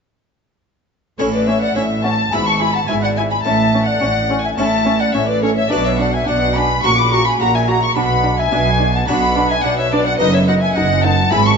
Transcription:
1.18 double bass section A1, cello section A2, harpsichord A2 C#4 E4, viola section C#4, flute A4, violin section C#5
1.33 flute B4, violin section D5
1.47 viola section C#4, flute C#5, violin section E5
1.61 flute D5, violin section F#5
1.75 double bass section A1, harpsichord A2, cello section A2, viola section C#4, flute C#5, violin section E5
2.03 viola section C#4, flute F#5, violin section A5
2.30 double bass section G#1, cello section G#2, harpsichord G#2 B3 E4, viola section E4, flute G#5, violin section B5
2.46 flute A5, violin section C#6
2.59 viola section E4, flute G#5, violin section B5
2.73 flute F#5, violin section A5
2.87 double bass section G#1, cello section G#2, harpsichord G#2, viola section E4, flute E5, violin section G#5
3.02 flute D5, violin section F#5
3.17 viola section E4, flute E5, violin section G#5
3.30 flute G#5, violin section B5
3.44 double bass section A1, cello section A2, harpsichord A2, viola section C#4, flute E5, violin section A5
3.74 viola section C#4
3.86 flute D5, violin section F#5
4.01 double bass section A1, cello section A2, harpsichord A2, viola section C#4
4.30 viola section C#4
4.44 flute E5, violin section G#5
4.57 double bass section A1, cello section A2, harpsichord A2 C#4 E4, viola section C#4, flute E5, violin section A5
4.86 viola section C#4
5.00 flute D5, violin section F#5
5.14 double bass section A1, cello section A2, harpsichord A2, viola section C#4, flute C#5, violin section E5
5.27 flute B4, violin section D5
5.42 viola section C#4, flute A4, violin section C#5
5.56 flute C#5, violin section E5
5.70 double bass section B1, cello section B2, harpsichord B2 D4 F#4, viola section D4, flute B4, violin section D5
5.85 flute C#5, violin section E5
5.99 viola section D4, flute D5, violin section F#5
6.13 flute E5, violin section G#5
6.26 double bass section B1, cello section B2, harpsichord B2, viola section D4, flute D5, violin section F#5
6.55 viola section D4, flute G#5, violin section B5
6.83 double bass section A#1, harpsichord A#2 C#4 F#4, cello section A#2, viola section F#4, flute A#5, violin section C#6
6.98 flute B5, violin section D6
7.11 viola section F#4, flute A#5, violin section C#6
7.25 flute G#5, violin section B5
7.40 double bass section A#1, harpsichord A#2, cello section A#2, viola section F#4, flute F#5, violin section A#5
7.54 flute E5, violin section G#5
7.68 viola section F#4, flute F#5, violin section A#5
7.82 flute A#5, violin section C#6
7.96 double bass section B1, harpsichord B2, cello section B2, viola section D4, flute F#5, violin section B5
8.24 viola section D4
8.39 flute E5, violin section G#5
8.52 double bass section B1, harpsichord B2, cello section B2, viola section D4
8.80 viola section D4
8.95 flute F#5, violin section A5
9.08 double bass section B1, harpsichord B2 B3 D4 F#4, cello section B2, viola section D4, flute F#5, violin section B5
9.37 viola section D4
9.50 flute E5, violin section G#5
9.63 double bass section B1, harpsichord B2, cello section B2, viola section D4, flute D5, violin section F#5
9.78 flute C#5, violin section E5
9.91 viola section D4, flute B4, violin section D5
10.05 flute D5, violin section F#5
10.18 double bass section F#1, harpsichord F#2 B3 D#4 A4, cello section F#2, viola section D#4, flute B4, violin section D#5
10.33 flute C#5, violin section E5
10.47 viola section D#4, flute D#5, violin section F#5
10.61 flute E5, violin section G#5
10.75 double bass section F#1, cello section F#2, harpsichord F#2, viola section D#4, flute D#5, violin section F#5
11.03 viola section D#4, flute F#5, violin section A5
11.30 double bass section G#1, cello section G#2, harpsichord G#2 B3 E4 G#4, viola section E4, flute G#5, violin section B5
11.45 flute A5, violin section C#6

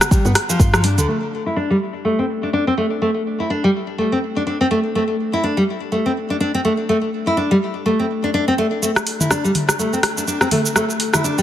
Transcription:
0.01 cross-stick, shaker
0.11 nylon-string guitar G3, kick, shaker
0.25 fm bass G2, nylon-string guitar B3, shaker
0.35 cross-stick, open hi-hat
0.49 nylon-string guitar F3, shaker
0.60 fm bass G2, nylon-string guitar F4, kick, shaker
0.74 nylon-string guitar F3, cross-stick, shaker
0.84 nylon-string guitar D4, open hi-hat, high tom
0.98 fm bass D2, nylon-string guitar D3, mid tom, shaker
1.08 nylon-string guitar A3
1.46 nylon-string guitar E4
1.56 nylon-string guitar D4
1.70 nylon-string guitar G3
2.05 nylon-string guitar A3
2.19 nylon-string guitar C4
2.43 nylon-string guitar D4
2.53 nylon-string guitar D4
2.67 nylon-string guitar C4
2.78 nylon-string guitar A3
3.02 nylon-string guitar A3
3.40 nylon-string guitar E4
3.50 nylon-string guitar D4
3.64 nylon-string guitar G3
3.98 nylon-string guitar A3
4.12 nylon-string guitar C4
4.36 nylon-string guitar D4
4.47 nylon-string guitar D4
4.61 nylon-string guitar C4
4.71 nylon-string guitar A3
4.95 nylon-string guitar A3
5.33 nylon-string guitar E4
5.44 nylon-string guitar D4
5.57 nylon-string guitar G3
5.92 nylon-string guitar A3
6.06 nylon-string guitar C4
6.30 nylon-string guitar D4
6.40 nylon-string guitar D4
6.54 nylon-string guitar C4
6.65 nylon-string guitar A3
6.89 nylon-string guitar A3
7.27 nylon-string guitar E4
7.37 nylon-string guitar D4
7.51 nylon-string guitar G3
7.86 nylon-string guitar A3
7.99 nylon-string guitar C4
8.24 nylon-string guitar D4
8.34 nylon-string guitar D4
8.48 nylon-string guitar C4
8.58 nylon-string guitar A3
8.82 nylon-string guitar A3, shaker
8.96 cross-stick, shaker
9.07 open hi-hat
9.20 nylon-string guitar E4, mid tom, shaker
9.31 nylon-string guitar D4, cross-stick, shaker
9.44 nylon-string guitar G3, shaker
9.55 open hi-hat, mid tom
9.69 cross-stick, shaker
9.79 nylon-string guitar A3, shaker
9.93 nylon-string guitar C4, shaker
10.03 cross-stick, open hi-hat
10.17 nylon-string guitar D4, shaker
10.27 nylon-string guitar D4, shaker
10.41 nylon-string guitar C4, cross-stick, shaker
10.51 nylon-string guitar A3, open hi-hat, mid tom
10.66 shaker
10.76 nylon-string guitar A3, cross-stick, shaker
10.90 shaker
11.00 open hi-hat
11.14 nylon-string guitar E4, cross-stick, mid tom, shaker
11.24 nylon-string guitar D4, shaker
11.38 nylon-string guitar G3, shaker

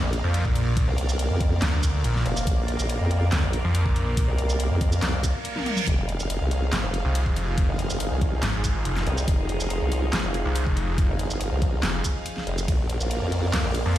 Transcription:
Already playing: supersaw synth A#3 A#4 D5 F5
0.03 wobble bass A#1
0.13 closed hi-hat
0.24 detuned saw bass F2
0.34 closed hi-hat
0.45 detuned saw bass A#1, kick
0.56 closed hi-hat
0.77 kick, closed hi-hat
0.88 wobble bass C2
0.98 closed hi-hat
1.09 shaker
1.19 closed hi-hat
1.30 wobble bass F2
1.41 kick, closed hi-hat
1.62 detuned saw bass D2, snare, clap, closed hi-hat
1.83 kick, closed hi-hat, shaker
2.04 detuned saw bass A#1, closed hi-hat
2.15 snare
2.26 wobble bass F1, closed hi-hat
2.37 shaker
2.47 wobble bass A#1, kick, closed hi-hat
2.68 closed hi-hat
2.79 wobble bass A#1, shaker
2.90 closed hi-hat
3.01 wobble bass F2
3.11 closed hi-hat
3.32 detuned saw bass D2, snare, clap, closed hi-hat
3.43 wobble bass A#1
3.53 closed hi-hat
3.64 detuned saw bass F2
3.75 closed hi-hat
3.86 detuned saw bass A#1, kick
3.96 closed hi-hat
4.17 kick, closed hi-hat
4.28 wobble bass C2
4.38 closed hi-hat
4.50 shaker
4.60 closed hi-hat
4.71 wobble bass F2
4.81 kick, closed hi-hat
4.92 shaker
5.02 wobble bass C2, snare, clap, closed hi-hat, reverse cymbal
5.24 kick, closed hi-hat, shaker
5.45 closed hi-hat
5.56 snare, high tom
5.66 closed hi-hat, mid tom
5.77 mid tom, shaker
5.87 wobble bass F1, supersaw synth F3 D#4 G#4, kick, closed hi-hat
6.09 closed hi-hat
6.20 wobble bass F1, shaker
6.30 closed hi-hat
6.41 wobble bass C2
6.51 closed hi-hat
6.73 detuned saw bass G#1, snare, clap, closed hi-hat
6.84 wobble bass F1
6.94 closed hi-hat
7.05 detuned saw bass C2
7.15 closed hi-hat
7.26 detuned saw bass F1, kick
7.36 closed hi-hat
7.58 kick, closed hi-hat
7.69 wobble bass G1
7.79 closed hi-hat
7.90 shaker
8.00 closed hi-hat
8.11 wobble bass C2
8.21 kick, closed hi-hat
8.43 detuned saw bass G#1, snare, clap, closed hi-hat
8.64 kick, closed hi-hat, shaker
8.85 detuned saw bass F1, closed hi-hat
8.96 snare, zap
9.07 wobble bass C2, closed hi-hat
9.18 shaker
9.28 wobble bass F1, kick, closed hi-hat
9.49 closed hi-hat
9.60 wobble bass F1, shaker
9.70 closed hi-hat
9.81 wobble bass C2
9.92 closed hi-hat
10.13 detuned saw bass G#1, snare, clap, closed hi-hat
10.24 wobble bass F1
10.34 closed hi-hat
10.45 detuned saw bass C2
10.56 closed hi-hat
10.67 detuned saw bass F1, kick
10.77 closed hi-hat
10.98 kick, closed hi-hat
11.09 wobble bass G1
11.19 closed hi-hat
11.30 shaker
11.41 closed hi-hat
11.52 wobble bass C2
11.62 kick, closed hi-hat
11.83 detuned saw bass F1, snare, clap, closed hi-hat
12.04 kick, closed hi-hat, shaker
12.26 closed hi-hat
12.37 snare
12.47 wobble bass F1, closed hi-hat
12.58 shaker
12.68 wobble bass A#1, supersaw synth A#3 A#4 D5 F5, kick, closed hi-hat, ride
12.90 closed hi-hat
13.01 wobble bass A#1, shaker
13.11 closed hi-hat, ride
13.22 wobble bass F2
13.32 closed hi-hat
13.53 detuned saw bass D2, snare, clap, closed hi-hat, ride
13.64 wobble bass A#1
13.75 closed hi-hat
13.86 detuned saw bass F2

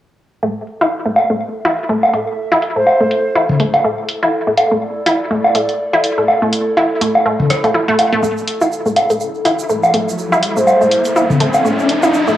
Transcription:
0.43 synth pluck A3, ambient pad E4, synth texture A4
0.67 ambient pad A4, open hi-hat
0.75 ambient pad E5
0.81 synth pluck E4, low woodblock
1.05 synth pluck A3
1.16 open hi-hat, low woodblock
1.30 synth pluck A3
1.65 synth pluck E4, open hi-hat, low woodblock
1.79 open hi-hat
1.89 synth pluck A3
2.03 low woodblock
2.13 synth pluck A3, open hi-hat
2.52 synth pluck E4, low woodblock
2.62 open hi-hat
2.76 synth pluck A3, flute C5
2.87 low woodblock
3.01 synth pluck A3
3.11 open hi-hat
3.36 synth pluck E4, low woodblock
3.49 mid tom
3.60 synth pluck A3, open hi-hat
3.74 open hi-hat, low woodblock
3.84 synth pluck A3
4.06 ambient pad D5, open hi-hat
4.23 synth pluck E4, low woodblock
4.47 synth pluck A3
4.57 open hi-hat, low woodblock
4.71 synth pluck A3
5.06 synth pluck E4, open hi-hat, low woodblock
5.31 synth pluck A3
5.45 low woodblock
5.55 synth pluck A3, open hi-hat
5.69 open hi-hat
5.93 synth pluck E4, low woodblock
6.04 open hi-hat
6.18 synth pluck A3
6.28 low woodblock
6.42 synth pluck A3
6.53 open hi-hat
6.77 synth pluck E4, low woodblock
7.01 synth pluck A3, open hi-hat
7.15 low woodblock
7.26 synth pluck A3
7.40 mid tom
7.50 cross-stick, open hi-hat
7.64 synth pluck A3, open hi-hat, low woodblock
7.74 synth pluck E4
7.88 synth pluck A3
7.99 open hi-hat, low woodblock
8.13 synth pluck A3
8.23 synth pluck A3, riser, shaker
8.38 shaker
8.48 open hi-hat
8.54 ambient pad E5
8.61 synth pluck E4, low woodblock, shaker
8.72 shaker
8.86 synth pluck A3, shaker
8.96 open hi-hat, low woodblock
9.10 synth pluck A3, open hi-hat, shaker
9.20 shaker
9.35 shaker
9.45 synth pluck E4, open hi-hat, low woodblock
9.59 shaker
9.69 synth pluck A3, shaker
9.83 low woodblock, shaker
9.94 synth pluck A3, open hi-hat
10.09 shaker
10.18 shaker
10.32 synth pluck E4, low woodblock, shaker
10.43 open hi-hat
10.57 synth pluck A3, flute C5, shaker
10.67 low woodblock, shaker
10.81 synth pluck A3, shaker
10.92 open hi-hat
11.05 open hi-hat, shaker
11.16 synth pluck E4, low woodblock, shaker
11.30 mid tom, shaker
11.40 synth pluck A3, open hi-hat
11.54 low woodblock, shaker
11.65 synth pluck A3, shaker
11.79 shaker
11.89 open hi-hat
12.03 synth pluck E4, low woodblock, shaker
12.14 shaker
12.27 synth pluck A3, shaker

